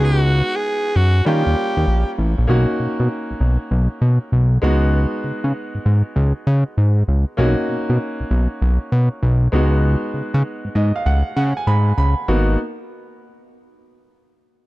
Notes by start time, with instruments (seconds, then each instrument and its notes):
Already playing: analog synth bass C#2, grand piano G#3 B3 D#4 F#4
0.05 alto saxophone G4
0.22 alto saxophone F#4
0.55 alto saxophone G#4
0.96 analog synth bass F#2, alto saxophone F#4
1.25 analog synth bass D#3, grand piano G3 A#3 C#4 F4, alto saxophone G4
1.47 analog synth bass D#2
1.77 analog synth bass D#2
1.87 analog synth bass A#1
2.18 analog synth bass A1
2.38 analog synth bass A#1
2.47 analog synth bass B1, grand piano A#3 C#4 D#4 F#4
2.80 analog synth bass B2
3.00 analog synth bass B2
3.31 analog synth bass B1
3.41 analog synth bass B1
3.71 analog synth bass B1
4.01 analog synth bass B2
4.32 analog synth bass B1
4.62 analog synth bass C#2, grand piano G#3 B3 D#4 F#4
5.24 analog synth bass C#3
5.44 analog synth bass C#3
5.75 analog synth bass G#2
5.86 analog synth bass G#2
6.16 analog synth bass C#2
6.47 analog synth bass C#3
6.78 analog synth bass G#2
7.08 analog synth bass C#2
7.37 analog synth bass B1, grand piano A#3 C#4 D#4 F#4
7.69 analog synth bass B2
7.90 analog synth bass B2
8.20 analog synth bass B1
8.31 analog synth bass B1
8.62 analog synth bass B1
8.92 analog synth bass B2
9.23 analog synth bass B1
9.52 analog synth bass C#2, grand piano G#3 B3 D#4 F#4
10.14 analog synth bass C#3
10.34 analog synth bass C#3
10.65 analog synth bass G#2
10.75 analog synth bass G#2, grand piano D#5
10.96 grand piano F5
11.06 analog synth bass C#2, grand piano F#5
11.36 analog synth bass C#3, grand piano F#5
11.57 grand piano G#5
11.67 analog synth bass G#2, grand piano B5
11.98 analog synth bass C#2, grand piano B5
12.28 analog synth bass G#1, grand piano A#3 B3 D#4 F#4